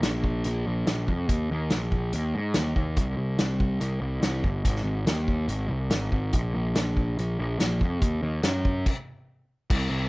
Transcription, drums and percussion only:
0.03 snare medium
0.03 closed hi-hat medium
0.24 kick medium
0.44 closed hi-hat medium
0.87 snare loud
0.87 closed hi-hat medium
1.08 kick medium
1.29 kick medium
1.29 closed hi-hat medium
1.70 snare medium
1.70 closed hi-hat medium
1.92 kick medium
2.13 closed hi-hat medium
2.54 snare loud
2.54 closed hi-hat medium
2.76 kick medium
2.97 kick medium
2.97 closed hi-hat soft
3.39 snare loud
3.39 closed hi-hat medium
3.60 kick medium
3.81 closed hi-hat medium
4.23 snare medium
4.23 closed hi-hat medium
4.44 kick medium
4.65 kick medium
4.65 closed hi-hat medium
4.76 snare soft
5.07 snare loud
5.07 closed hi-hat medium
5.28 kick medium
5.49 closed hi-hat medium
5.90 snare loud
5.90 closed hi-hat medium
6.12 kick medium
6.33 kick medium
6.33 closed hi-hat soft
6.75 snare loud
6.75 closed hi-hat medium
6.97 kick medium
7.19 closed hi-hat soft
7.60 snare medium
7.60 closed hi-hat medium
7.81 kick medium
8.02 kick medium
8.02 closed hi-hat soft
8.43 snare medium
8.43 closed hi-hat medium
8.65 kick medium
8.86 kick medium
8.86 crash medium
9.70 kick loud
9.70 crash medium

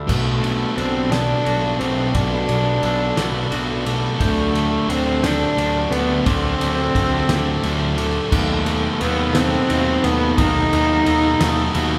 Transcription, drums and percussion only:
0.09 kick medium
0.09 crash loud
0.44 ride medium
0.78 ride medium
1.12 snare loud
1.12 ride medium
1.46 ride medium
1.81 ride medium
2.15 kick medium
2.15 ride medium
2.49 ride medium
2.83 ride medium
3.17 snare medium
3.17 ride medium
3.52 ride medium
3.86 ride medium
4.20 kick medium
4.20 ride medium
4.55 ride medium
4.90 ride medium
5.24 snare loud
5.24 ride medium
5.58 ride medium
5.92 ride medium
6.26 kick loud
6.26 ride medium
6.61 ride medium
6.95 kick medium
6.95 ride medium
7.29 snare loud
7.29 ride medium
7.63 ride medium
7.98 ride medium
8.32 kick loud
8.32 crash medium
8.66 ride medium
9.01 ride medium
9.35 snare loud
9.35 ride medium
9.70 ride medium
10.04 ride medium
10.38 kick loud
10.38 ride medium
10.73 ride medium
11.06 ride medium
11.41 snare loud
11.41 ride loud
11.75 ride medium

